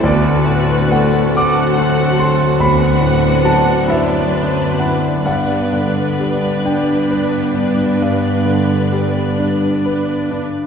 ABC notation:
X:1
M:12/8
L:1/16
Q:3/8=44
K:G
V:1 name="Violin section"
[Ad]6 [Af]6 [Ff]6 [Bd]6 | [Bd]16- [Bd]6- [Bd] z |]
V:2 name="Violin section"
B6 A6 B6 c6 | B16- B4- B z3 |]
V:3 name="Grand piano"
d4 f2 d'4 c'2 b4 a2 e4 f2 | f6 g12 z6 |]
V:4 name="Grand piano"
D,,2 A,,2 A,2 F2 c2 F2 D,,2 A,,2 F,2 E2 c2 E2 | G,,2 D,2 G,2 D2 B2 D2 G,,2 D,2 G,2 D2 B2 D2 |]
V:5 name="Viola section"
[B,F]6 [A,F]6 [B,D]12 | [B,D]16- [B,D]6- [B,D] z |]
V:6 name="French horn section"
[F,C]24 | [G,B,]16- [G,B,]6 z2 |]
V:7 name="Cello section" clef=bass
D,,12 D,,6 F,,6 | G,,16- G,,6- G,, z |]